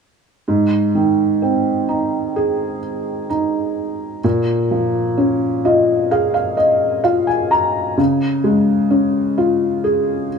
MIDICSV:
0, 0, Header, 1, 2, 480
1, 0, Start_track
1, 0, Key_signature, -4, "major"
1, 0, Tempo, 937500
1, 242, Time_signature, 4, 2, 24, 8
1, 5318, End_track
2, 0, Start_track
2, 0, Title_t, "Felt piano"
2, 0, Program_c, 0, 0
2, 245, Note_on_c, 0, 44, 48
2, 330, Control_c, 0, 64, 127
2, 486, Note_on_c, 0, 51, 39
2, 727, Note_on_c, 0, 60, 32
2, 965, Note_on_c, 0, 63, 37
2, 1209, Note_on_c, 0, 68, 41
2, 1428, Note_off_c, 0, 51, 0
2, 1669, Note_off_c, 0, 60, 0
2, 1680, Note_off_c, 0, 63, 0
2, 1688, Note_on_c, 0, 63, 40
2, 2150, Note_off_c, 0, 68, 0
2, 2151, Note_off_c, 0, 44, 0
2, 2155, Note_off_c, 0, 63, 0
2, 2171, Note_on_c, 0, 46, 54
2, 2177, Control_c, 0, 64, 0
2, 2255, Control_c, 0, 64, 127
2, 2412, Note_on_c, 0, 53, 38
2, 2650, Note_on_c, 0, 61, 35
2, 2892, Note_on_c, 0, 65, 39
2, 2892, Note_on_c, 0, 75, 41
2, 3114, Note_off_c, 0, 75, 0
2, 3129, Note_on_c, 0, 68, 41
2, 3130, Note_on_c, 0, 77, 50
2, 3238, Note_off_c, 0, 77, 0
2, 3246, Note_on_c, 0, 77, 50
2, 3350, Note_off_c, 0, 53, 0
2, 3359, Note_off_c, 0, 77, 0
2, 3364, Note_on_c, 0, 75, 49
2, 3589, Note_off_c, 0, 61, 0
2, 3590, Note_off_c, 0, 75, 0
2, 3596, Note_off_c, 0, 65, 0
2, 3603, Note_on_c, 0, 77, 50
2, 3604, Note_on_c, 0, 65, 37
2, 3718, Note_off_c, 0, 77, 0
2, 3723, Note_on_c, 0, 80, 48
2, 3838, Note_off_c, 0, 80, 0
2, 3845, Note_on_c, 0, 82, 45
2, 4069, Note_off_c, 0, 46, 0
2, 4069, Note_off_c, 0, 68, 0
2, 4070, Note_off_c, 0, 82, 0
2, 4072, Note_off_c, 0, 65, 0
2, 4082, Note_on_c, 0, 49, 52
2, 4096, Control_c, 0, 64, 0
2, 4191, Control_c, 0, 64, 127
2, 4320, Note_on_c, 0, 56, 44
2, 4560, Note_on_c, 0, 61, 34
2, 4801, Note_on_c, 0, 65, 40
2, 5038, Note_on_c, 0, 68, 43
2, 5258, Note_off_c, 0, 56, 0
2, 5318, Note_off_c, 0, 49, 0
2, 5318, Note_off_c, 0, 61, 0
2, 5318, Note_off_c, 0, 65, 0
2, 5318, Note_off_c, 0, 68, 0
2, 5318, End_track
0, 0, End_of_file